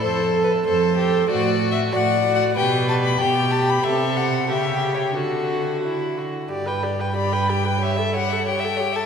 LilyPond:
<<
  \new Staff \with { instrumentName = "Violin" } { \time 2/4 \key f \lydian \tempo 4 = 93 \tuplet 3/2 { c''4 b'8 } c''4 | \key g \major \tuplet 3/2 { d''4 e''8 fis''4 fis''8 } | g''8 a''16 b''16 g''8 a''16 b''16 | e''8 fis''8 \tuplet 3/2 { e''4 cis''8 } |
a'4. r8 | r4 b''8 g''8 | e''8 fis''8 g''8. a''16 | }
  \new Staff \with { instrumentName = "Violin" } { \time 2/4 \key f \lydian a'4 a'8 g'8 | \key g \major fis'4 d''4 | b'4 g'4 | a'4 g'4 |
fis'4 e'8 fis'8 | d''16 g''16 d''16 g''16 d''16 g''16 d''16 g''16 | cis''16 e''16 cis''16 e''16 cis''16 e''16 cis''16 e''16 | }
  \new Staff \with { instrumentName = "Viola" } { \time 2/4 \key f \lydian a'8 a'8 a'8 a'8 | \key g \major fis'8 fis'8 fis'8 fis'8 | g'8 g'8 g'8 g'8 | g'4 g'4 |
fis'4.~ fis'16 r16 | g'16 b'16 g'16 b'16 g'16 b'16 g'16 b'16 | g'16 a'16 g'16 a'16 g'16 a'16 g'16 a'16 | }
  \new Staff \with { instrumentName = "Cello" } { \clef bass \time 2/4 \key f \lydian f,4 f,4 | \key g \major a,4 a,4 | b,4 b,4 | c4 cis4 |
d4. r8 | g,2~ | g,2 | }
>>